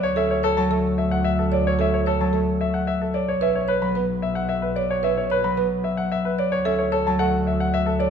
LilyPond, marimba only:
\new Staff \with { instrumentName = "Marimba" } { \time 3/4 \key d \major \tempo 4 = 111 r16 a'16 r16 cis''16 r16 a'16 r4 r16 cis''16 | r16 a'16 r16 cis''16 r16 a'16 r4 r16 cis''16 | r16 b'16 r16 cis''16 r16 b'16 r4 r16 cis''16 | r16 b'16 r16 cis''16 r16 b'16 r4 r16 cis''16 |
r16 a'16 r16 cis''16 r16 a'16 r4 r16 cis''16 | }